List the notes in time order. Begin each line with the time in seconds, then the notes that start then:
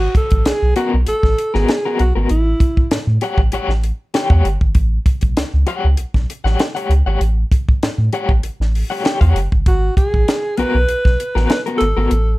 Already playing: F#4
0.15 A4, kick, closed hi-hat
0.31 A1, kick, closed hi-hat
0.46 B1 G#4, snare, closed hi-hat
0.62 B1
0.76 B3 F#4 A#4, closed hi-hat
0.94 B1
1.07 A1 A4, closed hi-hat
1.23 A1, kick, snare
1.38 closed hi-hat
1.54 G#1 B3 F#4 G#4 A#4, snare
1.68 snare, closed hi-hat
1.85 B3 F#4 A#4
1.99 B1 F#4, closed hi-hat
2.15 G#1 B3 F#4 A#4
2.29 A1 E4, closed hi-hat
2.60 kick, closed hi-hat
2.77 A2, kick
2.91 A2, snare, closed hi-hat
3.07 A2
3.21 G4 C#5 F#5, closed hi-hat
3.38 A1, kick
3.52 A1 G4 C#5 F#5, closed hi-hat
3.68 A1, snare
3.84 closed hi-hat
4.14 G4 C#5 G5, snare, closed hi-hat
4.30 E2 G4 C#5 F#5, kick
4.45 G1, closed hi-hat
4.61 G#1, kick
4.75 A1, kick, closed hi-hat
5.06 kick, closed hi-hat
5.21 B1, kick, closed hi-hat
5.37 C#2, snare, closed hi-hat
5.54 C#2
5.67 G4 C#5 F#5, closed hi-hat
5.84 C#2
5.97 B1, closed hi-hat
6.14 B1, kick, snare
6.30 closed hi-hat
6.44 A1 G4 C#5 F#5, snare
6.59 snare, closed hi-hat
6.75 G4 C#5 F#5, closed hi-hat
6.89 C#2, closed hi-hat
7.06 G#1 G4 C#5 F#5
7.21 A1, closed hi-hat
7.52 kick, closed hi-hat
7.69 A2, kick
7.83 A2, snare, closed hi-hat
7.98 A2
8.13 G4 C#5 F#5, closed hi-hat
8.29 A1, kick
8.43 A1, closed hi-hat
8.60 A1, snare
8.75 open hi-hat
8.90 G4 C#5 F#5
9.04 G4 C#5 G5, snare, closed hi-hat
9.21 E2 G4 C#5 F#5, kick, closed hi-hat
9.35 F#1, closed hi-hat
9.52 G1, kick
9.66 G#1 F#4, kick, closed hi-hat
9.97 G#4, kick, closed hi-hat
10.14 A1, kick
10.28 snare, closed hi-hat
10.57 B1 B3 F#4 A#4 B4, closed hi-hat
10.75 B1
10.89 B1, closed hi-hat
11.05 B1, kick, snare
11.20 closed hi-hat
11.35 A1 B3 F#4 A#4, snare
11.47 B4, snare, closed hi-hat
11.66 B3 F#4 A#4, closed hi-hat
11.78 G#1 A4, closed hi-hat
11.97 G#1 B3 F#4 A#4
12.11 A1, closed hi-hat